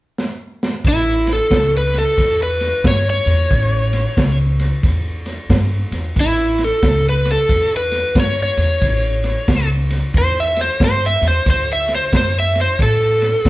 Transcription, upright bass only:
0.84 1.38 A1 medium
1.50 2.04 C#2 medium
2.17 2.71 E2 medium
2.84 3.18 G2 medium
3.26 3.46 E2 medium
3.51 4.04 A1 medium
4.17 4.70 C#2 medium
4.83 5.36 E2 medium
5.49 5.83 G2 medium
5.92 6.11 E2 medium
6.16 6.69 A1 medium
6.82 7.36 C#2 medium
7.49 8.02 E2 medium
8.15 8.49 G2 medium
8.57 8.77 E2 medium
8.81 9.35 A1 medium
9.48 10.01 C#2 medium
10.14 10.67 E2 medium
10.80 11.14 G2 medium
11.22 11.41 E2 medium
11.46 11.99 D2 medium
12.12 12.66 F#2 medium
12.79 13.32 A2 medium
13.45 13.49 C3 medium

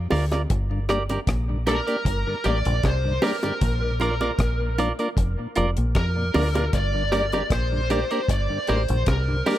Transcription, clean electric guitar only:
0.11 0.24 F4 medium
0.11 0.24 A#4 medium
0.11 0.25 D5 medium
0.32 0.42 F4 soft
0.32 0.41 A#4 soft
0.32 0.41 D5 medium
0.89 1.02 G4 medium
0.89 1.02 A#4 loud
0.89 1.03 D5 loud
1.10 1.19 G4 medium
1.10 1.19 A#4 medium
1.10 1.19 D5 medium
1.67 1.80 G4 medium
1.67 1.80 A#4 medium
1.67 1.80 D5 medium
1.87 1.97 G4 medium
1.87 1.97 A#4 medium
1.87 1.96 D5 medium
2.44 2.57 G4 medium
2.44 2.58 A#4 medium
2.44 2.58 D5 loud
3.22 3.35 G4 medium
3.22 3.36 A#4 loud
3.22 3.36 D5 loud
3.43 3.53 G4 soft
3.43 3.53 A#4 medium
3.43 3.52 D5 medium
4.01 4.14 F4 medium
4.01 4.14 A#4 medium
4.01 4.14 D5 medium
4.21 4.31 F4 medium
4.21 4.31 A#4 medium
4.21 4.30 D5 medium
4.79 4.91 F4 medium
4.79 4.92 A#4 medium
4.79 4.92 D5 medium
4.99 5.09 F4 medium
4.99 5.09 A#4 medium
4.99 5.08 D5 medium
5.56 5.69 F4 medium
5.56 5.69 A#4 medium
5.56 5.70 D5 loud
6.34 6.47 F4 medium
6.34 6.48 A#4 loud
6.34 6.48 D5 medium
6.54 6.65 F4 soft
6.54 6.64 A#4 medium
6.54 6.64 D5 medium
7.12 7.25 G4 medium
7.12 7.25 A#4 medium
7.12 7.26 D5 medium
7.33 7.43 G4 medium
7.33 7.42 A#4 medium
7.33 7.42 D5 medium
7.90 8.03 G4 medium
7.90 8.04 A#4 medium
7.90 8.04 D5 loud
8.11 8.21 G4 medium
8.11 8.20 A#4 medium
8.11 8.20 D5 medium
8.68 8.81 G4 medium
8.68 8.82 A#4 medium
8.68 8.82 D5 medium
9.46 9.58 G4 medium
9.46 9.58 A#4 medium
9.46 9.58 D5 medium

